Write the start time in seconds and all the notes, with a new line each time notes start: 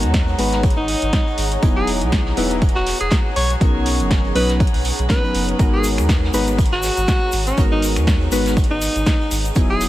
Already playing: G#3 B3 D#4 F#4 G#4 A#4 C#5 F#5 A#5
0.03 D#2, closed hi-hat
0.13 kick, snare, closed hi-hat
0.28 closed hi-hat
0.38 G#1 G#3 B3 D#4 F#4 B4, closed hi-hat, open hi-hat
0.52 snare, closed hi-hat
0.63 kick, closed hi-hat
0.70 closed hi-hat
0.77 G#1 D#4
0.88 closed hi-hat, open hi-hat
1.02 G#1, closed hi-hat
1.13 kick, snare, closed hi-hat
1.27 closed hi-hat
1.38 G#1, closed hi-hat, open hi-hat
1.52 closed hi-hat
1.62 E1 F#3 B3 D#4 E4 G#4, kick, closed hi-hat
1.77 G#4
1.87 closed hi-hat, open hi-hat
2.01 B1, closed hi-hat
2.12 kick, snare, closed hi-hat
2.26 snare
2.37 E1 F#3 B3 D#4 E4 B4, closed hi-hat, open hi-hat
2.51 closed hi-hat
2.62 kick, closed hi-hat
2.69 closed hi-hat
2.75 E1 F#4, snare
2.86 snare, closed hi-hat, open hi-hat
3.01 E1 G#4, closed hi-hat
3.10 kick, snare, closed hi-hat
3.36 B1 C#5, closed hi-hat, open hi-hat
3.50 closed hi-hat
3.60 B1 F#3 B3 C#4 D#4 A#4, kick, closed hi-hat
3.86 closed hi-hat, open hi-hat
4.00 F#1, closed hi-hat
4.11 kick, snare, closed hi-hat
4.24 closed hi-hat
4.35 B1 F#3 B3 C#4 D#4 B4, closed hi-hat, open hi-hat
4.49 snare, closed hi-hat
4.60 kick, closed hi-hat
4.67 closed hi-hat
4.74 B1, open hi-hat
4.84 closed hi-hat, open hi-hat
4.99 B1, closed hi-hat
5.09 F#3 B3 C#4 D#4 A#4 B4, kick, snare, closed hi-hat
5.23 F#3 B3 C#4 D#4 B4, closed hi-hat
5.35 F#1, closed hi-hat, open hi-hat
5.49 closed hi-hat
5.59 G#1 G#3 B3 D#4 F#4 A#4, kick, closed hi-hat, shaker
5.73 G#4
5.84 closed hi-hat, open hi-hat, shaker
5.98 D#2, finger snap, closed hi-hat, shaker
6.09 kick, snare, closed hi-hat, shaker
6.24 snare
6.33 G#1 G#3 B3 D#4 F#4 B4, closed hi-hat, open hi-hat, shaker
6.47 closed hi-hat, shaker
6.59 kick, closed hi-hat, shaker
6.66 closed hi-hat
6.72 G#1 F#4, snare
6.83 snare, closed hi-hat, open hi-hat, shaker
6.97 G#1, closed hi-hat, shaker
7.08 kick, snare, closed hi-hat, shaker
7.32 G#1, closed hi-hat, open hi-hat, shaker
7.47 C#4, closed hi-hat, shaker
7.57 G#1 G#3 B3 D#4 F#4 A#4, kick, closed hi-hat, shaker
7.72 D#4
7.82 closed hi-hat, open hi-hat, shaker
7.96 D#2, finger snap, closed hi-hat, shaker
8.07 kick, snare, closed hi-hat, shaker
8.21 closed hi-hat
8.32 G#1 G#3 B3 D#4 F#4 B4, closed hi-hat, open hi-hat, shaker
8.46 snare, closed hi-hat, shaker
8.57 kick, closed hi-hat, shaker
8.64 closed hi-hat
8.71 G#1 D#4
8.82 closed hi-hat, open hi-hat, shaker
8.96 G#1, closed hi-hat, shaker
9.06 kick, snare, closed hi-hat, shaker
9.21 closed hi-hat
9.31 G#1, closed hi-hat, open hi-hat, shaker
9.45 closed hi-hat, shaker
9.55 E1 F#3 B3 D#4 E4 G#4, kick, closed hi-hat, shaker
9.70 G#4
9.81 closed hi-hat, open hi-hat, shaker